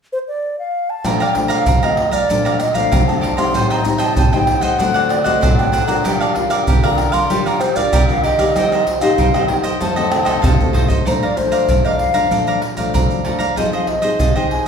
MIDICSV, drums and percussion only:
0, 0, Header, 1, 4, 480
1, 0, Start_track
1, 0, Key_signature, -2, "major"
1, 0, Tempo, 626959
1, 802, Time_signature, 4, 2, 24, 8
1, 11237, End_track
2, 0, Start_track
2, 0, Title_t, "Pandeiro"
2, 801, Note_on_c, 9, 54, 77
2, 877, Note_off_c, 9, 54, 0
2, 921, Note_on_c, 9, 54, 34
2, 997, Note_off_c, 9, 54, 0
2, 1033, Note_on_c, 9, 54, 69
2, 1109, Note_off_c, 9, 54, 0
2, 1147, Note_on_c, 9, 54, 59
2, 1224, Note_off_c, 9, 54, 0
2, 1272, Note_on_c, 9, 54, 79
2, 1349, Note_off_c, 9, 54, 0
2, 1400, Note_on_c, 9, 54, 34
2, 1477, Note_off_c, 9, 54, 0
2, 1509, Note_on_c, 9, 54, 67
2, 1586, Note_off_c, 9, 54, 0
2, 1629, Note_on_c, 9, 54, 62
2, 1705, Note_off_c, 9, 54, 0
2, 1760, Note_on_c, 9, 54, 78
2, 1836, Note_off_c, 9, 54, 0
2, 1882, Note_on_c, 9, 54, 33
2, 1959, Note_off_c, 9, 54, 0
2, 1987, Note_on_c, 9, 54, 66
2, 2064, Note_off_c, 9, 54, 0
2, 2104, Note_on_c, 9, 54, 56
2, 2181, Note_off_c, 9, 54, 0
2, 2238, Note_on_c, 9, 54, 82
2, 2314, Note_off_c, 9, 54, 0
2, 2366, Note_on_c, 9, 54, 33
2, 2443, Note_off_c, 9, 54, 0
2, 2476, Note_on_c, 9, 54, 71
2, 2552, Note_off_c, 9, 54, 0
2, 2588, Note_on_c, 9, 54, 54
2, 2665, Note_off_c, 9, 54, 0
2, 2713, Note_on_c, 9, 54, 78
2, 2789, Note_off_c, 9, 54, 0
2, 2838, Note_on_c, 9, 54, 37
2, 2915, Note_off_c, 9, 54, 0
2, 2945, Note_on_c, 9, 54, 70
2, 3021, Note_off_c, 9, 54, 0
2, 3058, Note_on_c, 9, 54, 60
2, 3134, Note_off_c, 9, 54, 0
2, 3188, Note_on_c, 9, 54, 81
2, 3264, Note_off_c, 9, 54, 0
2, 3314, Note_on_c, 9, 54, 34
2, 3390, Note_off_c, 9, 54, 0
2, 3423, Note_on_c, 9, 54, 70
2, 3499, Note_off_c, 9, 54, 0
2, 3539, Note_on_c, 9, 54, 64
2, 3616, Note_off_c, 9, 54, 0
2, 3671, Note_on_c, 9, 54, 78
2, 3748, Note_off_c, 9, 54, 0
2, 3797, Note_on_c, 9, 54, 33
2, 3873, Note_off_c, 9, 54, 0
2, 3908, Note_on_c, 9, 54, 70
2, 3984, Note_off_c, 9, 54, 0
2, 4024, Note_on_c, 9, 54, 61
2, 4101, Note_off_c, 9, 54, 0
2, 4157, Note_on_c, 9, 54, 84
2, 4233, Note_off_c, 9, 54, 0
2, 4281, Note_on_c, 9, 54, 33
2, 4357, Note_off_c, 9, 54, 0
2, 4390, Note_on_c, 9, 54, 74
2, 4466, Note_off_c, 9, 54, 0
2, 4503, Note_on_c, 9, 54, 58
2, 4580, Note_off_c, 9, 54, 0
2, 4631, Note_on_c, 9, 54, 84
2, 4708, Note_off_c, 9, 54, 0
2, 4757, Note_on_c, 9, 54, 36
2, 4834, Note_off_c, 9, 54, 0
2, 4868, Note_on_c, 9, 54, 69
2, 4944, Note_off_c, 9, 54, 0
2, 4977, Note_on_c, 9, 54, 61
2, 5054, Note_off_c, 9, 54, 0
2, 5109, Note_on_c, 9, 54, 75
2, 5185, Note_off_c, 9, 54, 0
2, 5233, Note_on_c, 9, 54, 34
2, 5309, Note_off_c, 9, 54, 0
2, 5343, Note_on_c, 9, 54, 64
2, 5419, Note_off_c, 9, 54, 0
2, 5461, Note_on_c, 9, 54, 62
2, 5538, Note_off_c, 9, 54, 0
2, 5590, Note_on_c, 9, 54, 78
2, 5666, Note_off_c, 9, 54, 0
2, 5716, Note_on_c, 9, 54, 35
2, 5793, Note_off_c, 9, 54, 0
2, 5823, Note_on_c, 9, 54, 71
2, 5900, Note_off_c, 9, 54, 0
2, 5940, Note_on_c, 9, 54, 58
2, 6017, Note_off_c, 9, 54, 0
2, 6069, Note_on_c, 9, 54, 86
2, 6146, Note_off_c, 9, 54, 0
2, 6195, Note_on_c, 9, 54, 33
2, 6271, Note_off_c, 9, 54, 0
2, 6305, Note_on_c, 9, 54, 69
2, 6382, Note_off_c, 9, 54, 0
2, 6422, Note_on_c, 9, 54, 59
2, 6498, Note_off_c, 9, 54, 0
2, 6552, Note_on_c, 9, 54, 83
2, 6629, Note_off_c, 9, 54, 0
2, 6678, Note_on_c, 9, 54, 35
2, 6754, Note_off_c, 9, 54, 0
2, 6789, Note_on_c, 9, 54, 73
2, 6866, Note_off_c, 9, 54, 0
2, 6901, Note_on_c, 9, 54, 60
2, 6978, Note_off_c, 9, 54, 0
2, 7029, Note_on_c, 9, 54, 77
2, 7106, Note_off_c, 9, 54, 0
2, 7154, Note_on_c, 9, 54, 35
2, 7230, Note_off_c, 9, 54, 0
2, 7261, Note_on_c, 9, 54, 68
2, 7337, Note_off_c, 9, 54, 0
2, 7379, Note_on_c, 9, 54, 59
2, 7456, Note_off_c, 9, 54, 0
2, 7509, Note_on_c, 9, 54, 78
2, 7585, Note_off_c, 9, 54, 0
2, 7636, Note_on_c, 9, 54, 33
2, 7712, Note_off_c, 9, 54, 0
2, 7745, Note_on_c, 9, 54, 67
2, 7822, Note_off_c, 9, 54, 0
2, 7857, Note_on_c, 9, 54, 58
2, 7934, Note_off_c, 9, 54, 0
2, 7990, Note_on_c, 9, 54, 80
2, 8066, Note_off_c, 9, 54, 0
2, 8119, Note_on_c, 9, 54, 33
2, 8195, Note_off_c, 9, 54, 0
2, 8227, Note_on_c, 9, 54, 68
2, 8303, Note_off_c, 9, 54, 0
2, 8343, Note_on_c, 9, 54, 58
2, 8420, Note_off_c, 9, 54, 0
2, 8473, Note_on_c, 9, 54, 76
2, 8550, Note_off_c, 9, 54, 0
2, 8596, Note_on_c, 9, 54, 34
2, 8673, Note_off_c, 9, 54, 0
2, 8706, Note_on_c, 9, 54, 65
2, 8783, Note_off_c, 9, 54, 0
2, 8818, Note_on_c, 9, 54, 56
2, 8895, Note_off_c, 9, 54, 0
2, 8946, Note_on_c, 9, 54, 77
2, 9023, Note_off_c, 9, 54, 0
2, 9072, Note_on_c, 9, 54, 31
2, 9149, Note_off_c, 9, 54, 0
2, 9181, Note_on_c, 9, 54, 63
2, 9258, Note_off_c, 9, 54, 0
2, 9294, Note_on_c, 9, 54, 57
2, 9371, Note_off_c, 9, 54, 0
2, 9426, Note_on_c, 9, 54, 71
2, 9502, Note_off_c, 9, 54, 0
2, 9547, Note_on_c, 9, 54, 32
2, 9624, Note_off_c, 9, 54, 0
2, 9661, Note_on_c, 9, 54, 64
2, 9737, Note_off_c, 9, 54, 0
2, 9776, Note_on_c, 9, 54, 56
2, 9852, Note_off_c, 9, 54, 0
2, 9910, Note_on_c, 9, 54, 76
2, 9986, Note_off_c, 9, 54, 0
2, 10032, Note_on_c, 9, 54, 30
2, 10109, Note_off_c, 9, 54, 0
2, 10142, Note_on_c, 9, 54, 65
2, 10218, Note_off_c, 9, 54, 0
2, 10259, Note_on_c, 9, 54, 54
2, 10335, Note_off_c, 9, 54, 0
2, 10391, Note_on_c, 9, 54, 77
2, 10468, Note_off_c, 9, 54, 0
2, 10511, Note_on_c, 9, 54, 33
2, 10588, Note_off_c, 9, 54, 0
2, 10620, Note_on_c, 9, 54, 69
2, 10697, Note_off_c, 9, 54, 0
2, 10735, Note_on_c, 9, 54, 56
2, 10812, Note_off_c, 9, 54, 0
2, 10868, Note_on_c, 9, 54, 75
2, 10944, Note_off_c, 9, 54, 0
2, 10999, Note_on_c, 9, 54, 32
2, 11075, Note_off_c, 9, 54, 0
2, 11109, Note_on_c, 9, 54, 63
2, 11185, Note_off_c, 9, 54, 0
2, 11237, End_track
3, 0, Start_track
3, 0, Title_t, "Tamborim"
3, 801, Note_on_c, 9, 60, 80
3, 877, Note_off_c, 9, 60, 0
3, 921, Note_on_c, 9, 60, 84
3, 997, Note_off_c, 9, 60, 0
3, 1147, Note_on_c, 9, 60, 79
3, 1224, Note_off_c, 9, 60, 0
3, 1400, Note_on_c, 9, 60, 79
3, 1477, Note_off_c, 9, 60, 0
3, 1509, Note_on_c, 9, 60, 80
3, 1586, Note_off_c, 9, 60, 0
3, 1882, Note_on_c, 9, 60, 81
3, 1959, Note_off_c, 9, 60, 0
3, 1987, Note_on_c, 9, 60, 76
3, 2064, Note_off_c, 9, 60, 0
3, 2238, Note_on_c, 9, 60, 79
3, 2314, Note_off_c, 9, 60, 0
3, 2366, Note_on_c, 9, 60, 74
3, 2443, Note_off_c, 9, 60, 0
3, 2588, Note_on_c, 9, 60, 83
3, 2665, Note_off_c, 9, 60, 0
3, 2713, Note_on_c, 9, 60, 79
3, 2789, Note_off_c, 9, 60, 0
3, 2838, Note_on_c, 9, 60, 82
3, 2915, Note_off_c, 9, 60, 0
3, 3058, Note_on_c, 9, 60, 81
3, 3134, Note_off_c, 9, 60, 0
3, 3314, Note_on_c, 9, 60, 78
3, 3390, Note_off_c, 9, 60, 0
3, 3423, Note_on_c, 9, 60, 75
3, 3499, Note_off_c, 9, 60, 0
3, 3797, Note_on_c, 9, 60, 80
3, 3873, Note_off_c, 9, 60, 0
3, 3908, Note_on_c, 9, 60, 83
3, 3984, Note_off_c, 9, 60, 0
3, 4157, Note_on_c, 9, 60, 81
3, 4233, Note_off_c, 9, 60, 0
3, 4281, Note_on_c, 9, 60, 77
3, 4357, Note_off_c, 9, 60, 0
3, 4503, Note_on_c, 9, 60, 79
3, 4580, Note_off_c, 9, 60, 0
3, 4631, Note_on_c, 9, 60, 83
3, 4708, Note_off_c, 9, 60, 0
3, 4757, Note_on_c, 9, 60, 81
3, 4834, Note_off_c, 9, 60, 0
3, 4977, Note_on_c, 9, 60, 84
3, 5054, Note_off_c, 9, 60, 0
3, 5233, Note_on_c, 9, 60, 78
3, 5309, Note_off_c, 9, 60, 0
3, 5343, Note_on_c, 9, 60, 84
3, 5419, Note_off_c, 9, 60, 0
3, 5716, Note_on_c, 9, 60, 79
3, 5793, Note_off_c, 9, 60, 0
3, 5823, Note_on_c, 9, 60, 80
3, 5900, Note_off_c, 9, 60, 0
3, 6069, Note_on_c, 9, 60, 86
3, 6146, Note_off_c, 9, 60, 0
3, 6195, Note_on_c, 9, 60, 78
3, 6271, Note_off_c, 9, 60, 0
3, 6422, Note_on_c, 9, 60, 79
3, 6498, Note_off_c, 9, 60, 0
3, 6552, Note_on_c, 9, 60, 83
3, 6629, Note_off_c, 9, 60, 0
3, 6678, Note_on_c, 9, 60, 80
3, 6754, Note_off_c, 9, 60, 0
3, 6901, Note_on_c, 9, 60, 84
3, 6978, Note_off_c, 9, 60, 0
3, 7154, Note_on_c, 9, 60, 85
3, 7230, Note_off_c, 9, 60, 0
3, 7261, Note_on_c, 9, 60, 80
3, 7337, Note_off_c, 9, 60, 0
3, 7636, Note_on_c, 9, 60, 86
3, 7712, Note_off_c, 9, 60, 0
3, 7745, Note_on_c, 9, 60, 88
3, 7822, Note_off_c, 9, 60, 0
3, 7857, Note_on_c, 9, 60, 100
3, 7934, Note_off_c, 9, 60, 0
3, 11237, End_track
4, 0, Start_track
4, 0, Title_t, "Drums"
4, 801, Note_on_c, 9, 82, 82
4, 801, Note_on_c, 9, 87, 59
4, 877, Note_off_c, 9, 82, 0
4, 877, Note_off_c, 9, 87, 0
4, 921, Note_on_c, 9, 82, 36
4, 997, Note_off_c, 9, 82, 0
4, 1033, Note_on_c, 9, 87, 34
4, 1109, Note_off_c, 9, 87, 0
4, 1147, Note_on_c, 9, 82, 84
4, 1224, Note_off_c, 9, 82, 0
4, 1272, Note_on_c, 9, 82, 84
4, 1272, Note_on_c, 9, 87, 100
4, 1349, Note_off_c, 9, 82, 0
4, 1349, Note_off_c, 9, 87, 0
4, 1400, Note_on_c, 9, 82, 32
4, 1477, Note_off_c, 9, 82, 0
4, 1629, Note_on_c, 9, 82, 87
4, 1629, Note_on_c, 9, 87, 35
4, 1705, Note_off_c, 9, 82, 0
4, 1705, Note_off_c, 9, 87, 0
4, 1760, Note_on_c, 9, 82, 79
4, 1760, Note_on_c, 9, 87, 57
4, 1836, Note_off_c, 9, 82, 0
4, 1836, Note_off_c, 9, 87, 0
4, 1882, Note_on_c, 9, 82, 33
4, 1959, Note_off_c, 9, 82, 0
4, 1987, Note_on_c, 9, 82, 67
4, 2064, Note_off_c, 9, 82, 0
4, 2104, Note_on_c, 9, 82, 83
4, 2104, Note_on_c, 9, 87, 34
4, 2181, Note_off_c, 9, 82, 0
4, 2181, Note_off_c, 9, 87, 0
4, 2238, Note_on_c, 9, 82, 84
4, 2238, Note_on_c, 9, 87, 103
4, 2314, Note_off_c, 9, 82, 0
4, 2314, Note_off_c, 9, 87, 0
4, 2366, Note_on_c, 9, 82, 33
4, 2443, Note_off_c, 9, 82, 0
4, 2476, Note_on_c, 9, 87, 32
4, 2552, Note_off_c, 9, 87, 0
4, 2588, Note_on_c, 9, 82, 78
4, 2588, Note_on_c, 9, 87, 32
4, 2665, Note_off_c, 9, 82, 0
4, 2665, Note_off_c, 9, 87, 0
4, 2713, Note_on_c, 9, 82, 83
4, 2713, Note_on_c, 9, 87, 59
4, 2789, Note_off_c, 9, 82, 0
4, 2789, Note_off_c, 9, 87, 0
4, 2838, Note_on_c, 9, 82, 36
4, 2915, Note_off_c, 9, 82, 0
4, 2945, Note_on_c, 9, 82, 73
4, 2945, Note_on_c, 9, 87, 35
4, 3021, Note_off_c, 9, 82, 0
4, 3021, Note_off_c, 9, 87, 0
4, 3058, Note_on_c, 9, 82, 83
4, 3134, Note_off_c, 9, 82, 0
4, 3188, Note_on_c, 9, 82, 75
4, 3188, Note_on_c, 9, 87, 106
4, 3264, Note_off_c, 9, 82, 0
4, 3264, Note_off_c, 9, 87, 0
4, 3314, Note_on_c, 9, 82, 34
4, 3390, Note_off_c, 9, 82, 0
4, 3539, Note_on_c, 9, 82, 88
4, 3539, Note_on_c, 9, 87, 35
4, 3616, Note_off_c, 9, 82, 0
4, 3616, Note_off_c, 9, 87, 0
4, 3671, Note_on_c, 9, 82, 79
4, 3671, Note_on_c, 9, 87, 57
4, 3748, Note_off_c, 9, 82, 0
4, 3748, Note_off_c, 9, 87, 0
4, 3797, Note_on_c, 9, 82, 34
4, 3873, Note_off_c, 9, 82, 0
4, 4024, Note_on_c, 9, 82, 79
4, 4024, Note_on_c, 9, 87, 34
4, 4101, Note_off_c, 9, 82, 0
4, 4101, Note_off_c, 9, 87, 0
4, 4157, Note_on_c, 9, 82, 80
4, 4157, Note_on_c, 9, 87, 100
4, 4233, Note_off_c, 9, 82, 0
4, 4233, Note_off_c, 9, 87, 0
4, 4281, Note_on_c, 9, 82, 32
4, 4357, Note_off_c, 9, 82, 0
4, 4390, Note_on_c, 9, 82, 71
4, 4466, Note_off_c, 9, 82, 0
4, 4503, Note_on_c, 9, 82, 76
4, 4503, Note_on_c, 9, 87, 33
4, 4580, Note_off_c, 9, 82, 0
4, 4580, Note_off_c, 9, 87, 0
4, 4631, Note_on_c, 9, 82, 81
4, 4631, Note_on_c, 9, 87, 55
4, 4708, Note_off_c, 9, 82, 0
4, 4708, Note_off_c, 9, 87, 0
4, 4757, Note_on_c, 9, 82, 34
4, 4834, Note_off_c, 9, 82, 0
4, 4868, Note_on_c, 9, 87, 33
4, 4944, Note_off_c, 9, 87, 0
4, 4977, Note_on_c, 9, 82, 84
4, 5054, Note_off_c, 9, 82, 0
4, 5109, Note_on_c, 9, 82, 82
4, 5109, Note_on_c, 9, 87, 103
4, 5185, Note_off_c, 9, 82, 0
4, 5185, Note_off_c, 9, 87, 0
4, 5233, Note_on_c, 9, 82, 34
4, 5309, Note_off_c, 9, 82, 0
4, 5461, Note_on_c, 9, 82, 84
4, 5461, Note_on_c, 9, 87, 37
4, 5538, Note_off_c, 9, 82, 0
4, 5538, Note_off_c, 9, 87, 0
4, 5590, Note_on_c, 9, 82, 78
4, 5590, Note_on_c, 9, 87, 56
4, 5666, Note_off_c, 9, 82, 0
4, 5666, Note_off_c, 9, 87, 0
4, 5716, Note_on_c, 9, 82, 32
4, 5793, Note_off_c, 9, 82, 0
4, 5823, Note_on_c, 9, 82, 68
4, 5900, Note_off_c, 9, 82, 0
4, 5940, Note_on_c, 9, 82, 86
4, 5940, Note_on_c, 9, 87, 35
4, 6017, Note_off_c, 9, 82, 0
4, 6017, Note_off_c, 9, 87, 0
4, 6069, Note_on_c, 9, 82, 85
4, 6069, Note_on_c, 9, 87, 106
4, 6146, Note_off_c, 9, 82, 0
4, 6146, Note_off_c, 9, 87, 0
4, 6195, Note_on_c, 9, 82, 34
4, 6271, Note_off_c, 9, 82, 0
4, 6305, Note_on_c, 9, 87, 33
4, 6382, Note_off_c, 9, 87, 0
4, 6422, Note_on_c, 9, 82, 81
4, 6422, Note_on_c, 9, 87, 35
4, 6498, Note_off_c, 9, 82, 0
4, 6498, Note_off_c, 9, 87, 0
4, 6552, Note_on_c, 9, 82, 81
4, 6552, Note_on_c, 9, 87, 59
4, 6629, Note_off_c, 9, 82, 0
4, 6629, Note_off_c, 9, 87, 0
4, 6678, Note_on_c, 9, 82, 36
4, 6754, Note_off_c, 9, 82, 0
4, 6789, Note_on_c, 9, 87, 36
4, 6866, Note_off_c, 9, 87, 0
4, 6901, Note_on_c, 9, 82, 86
4, 6978, Note_off_c, 9, 82, 0
4, 7029, Note_on_c, 9, 82, 75
4, 7029, Note_on_c, 9, 87, 97
4, 7106, Note_off_c, 9, 82, 0
4, 7106, Note_off_c, 9, 87, 0
4, 7154, Note_on_c, 9, 82, 33
4, 7230, Note_off_c, 9, 82, 0
4, 7379, Note_on_c, 9, 82, 84
4, 7379, Note_on_c, 9, 87, 36
4, 7456, Note_off_c, 9, 82, 0
4, 7456, Note_off_c, 9, 87, 0
4, 7509, Note_on_c, 9, 82, 76
4, 7509, Note_on_c, 9, 87, 56
4, 7585, Note_off_c, 9, 82, 0
4, 7585, Note_off_c, 9, 87, 0
4, 7636, Note_on_c, 9, 82, 36
4, 7712, Note_off_c, 9, 82, 0
4, 7857, Note_on_c, 9, 82, 81
4, 7857, Note_on_c, 9, 87, 34
4, 7934, Note_off_c, 9, 82, 0
4, 7934, Note_off_c, 9, 87, 0
4, 7990, Note_on_c, 9, 82, 81
4, 7990, Note_on_c, 9, 87, 108
4, 8066, Note_off_c, 9, 82, 0
4, 8066, Note_off_c, 9, 87, 0
4, 8119, Note_on_c, 9, 82, 33
4, 8119, Note_on_c, 9, 87, 85
4, 8195, Note_off_c, 9, 82, 0
4, 8195, Note_off_c, 9, 87, 0
4, 8227, Note_on_c, 9, 87, 105
4, 8303, Note_off_c, 9, 87, 0
4, 8343, Note_on_c, 9, 82, 81
4, 8343, Note_on_c, 9, 87, 90
4, 8420, Note_off_c, 9, 82, 0
4, 8420, Note_off_c, 9, 87, 0
4, 8473, Note_on_c, 9, 82, 73
4, 8473, Note_on_c, 9, 87, 55
4, 8550, Note_off_c, 9, 82, 0
4, 8550, Note_off_c, 9, 87, 0
4, 8596, Note_on_c, 9, 82, 33
4, 8673, Note_off_c, 9, 82, 0
4, 8706, Note_on_c, 9, 82, 70
4, 8706, Note_on_c, 9, 87, 32
4, 8783, Note_off_c, 9, 82, 0
4, 8783, Note_off_c, 9, 87, 0
4, 8818, Note_on_c, 9, 82, 81
4, 8895, Note_off_c, 9, 82, 0
4, 8946, Note_on_c, 9, 82, 73
4, 8946, Note_on_c, 9, 87, 92
4, 9023, Note_off_c, 9, 82, 0
4, 9023, Note_off_c, 9, 87, 0
4, 9072, Note_on_c, 9, 82, 31
4, 9149, Note_off_c, 9, 82, 0
4, 9294, Note_on_c, 9, 82, 80
4, 9294, Note_on_c, 9, 87, 34
4, 9371, Note_off_c, 9, 82, 0
4, 9371, Note_off_c, 9, 87, 0
4, 9426, Note_on_c, 9, 82, 74
4, 9426, Note_on_c, 9, 87, 54
4, 9502, Note_off_c, 9, 82, 0
4, 9502, Note_off_c, 9, 87, 0
4, 9547, Note_on_c, 9, 82, 30
4, 9624, Note_off_c, 9, 82, 0
4, 9776, Note_on_c, 9, 82, 76
4, 9776, Note_on_c, 9, 87, 33
4, 9852, Note_off_c, 9, 82, 0
4, 9852, Note_off_c, 9, 87, 0
4, 9910, Note_on_c, 9, 82, 79
4, 9910, Note_on_c, 9, 87, 99
4, 9986, Note_off_c, 9, 82, 0
4, 9986, Note_off_c, 9, 87, 0
4, 10032, Note_on_c, 9, 82, 33
4, 10109, Note_off_c, 9, 82, 0
4, 10259, Note_on_c, 9, 82, 77
4, 10259, Note_on_c, 9, 87, 31
4, 10335, Note_off_c, 9, 82, 0
4, 10335, Note_off_c, 9, 87, 0
4, 10391, Note_on_c, 9, 82, 80
4, 10391, Note_on_c, 9, 87, 58
4, 10468, Note_off_c, 9, 82, 0
4, 10468, Note_off_c, 9, 87, 0
4, 10511, Note_on_c, 9, 82, 32
4, 10588, Note_off_c, 9, 82, 0
4, 10620, Note_on_c, 9, 87, 34
4, 10697, Note_off_c, 9, 87, 0
4, 10735, Note_on_c, 9, 82, 82
4, 10812, Note_off_c, 9, 82, 0
4, 10868, Note_on_c, 9, 82, 78
4, 10868, Note_on_c, 9, 87, 96
4, 10944, Note_off_c, 9, 82, 0
4, 10944, Note_off_c, 9, 87, 0
4, 10999, Note_on_c, 9, 82, 34
4, 11075, Note_off_c, 9, 82, 0
4, 11237, End_track
0, 0, End_of_file